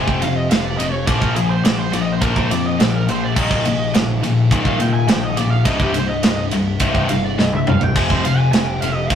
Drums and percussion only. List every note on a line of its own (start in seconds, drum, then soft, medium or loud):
0.08 kick medium
0.22 ride medium
0.51 snare loud
0.51 ride loud
0.80 ride medium
1.07 kick loud
1.07 ride loud
1.22 kick medium
1.36 ride medium
1.65 snare loud
1.65 ride loud
1.93 ride medium
2.21 kick loud
2.21 ride loud
2.36 kick medium
2.51 ride medium
2.80 snare loud
2.80 ride loud
3.09 ride medium
3.36 kick loud
3.36 crash loud
3.51 kick medium
3.65 ride medium
3.94 snare loud
3.94 ride loud
4.23 ride medium
4.51 kick loud
4.51 ride loud
4.65 kick medium
4.80 ride medium
5.08 snare loud
5.08 ride loud
5.37 ride medium
5.65 kick loud
5.65 ride loud
5.80 kick medium
5.94 ride medium
6.23 snare loud
6.23 ride loud
6.51 ride medium
6.80 kick loud
6.80 ride loud
6.95 kick medium
7.09 ride medium
7.39 snare medium
7.53 high tom medium
7.67 mid tom medium
7.81 floor tom medium
7.96 kick loud
7.96 crash loud
8.10 kick medium
8.25 ride medium
8.53 snare loud
8.53 ride loud
8.82 ride medium
9.10 kick loud
9.10 ride loud